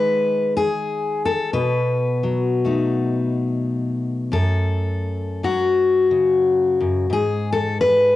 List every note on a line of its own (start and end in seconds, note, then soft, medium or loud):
0.00 1.50 D#3 medium
0.00 1.50 G#3 medium
0.00 0.56 B4 loud
0.57 1.25 G#4 medium
1.25 1.53 A4 medium
1.53 4.32 B2 medium
1.53 4.32 B4 medium
2.23 4.29 F#3 medium
2.65 7.10 A3 soft
2.65 4.29 D#4 soft
4.32 6.79 F#2 medium
4.32 5.43 A4 medium
5.43 7.13 F#3 medium
5.43 7.11 F#4 medium
6.11 7.06 C#3 medium
6.81 7.09 F#2 medium
7.10 8.16 G#2 medium
7.10 7.52 G#4 loud
7.53 7.80 A4 medium
7.81 8.16 B4 loud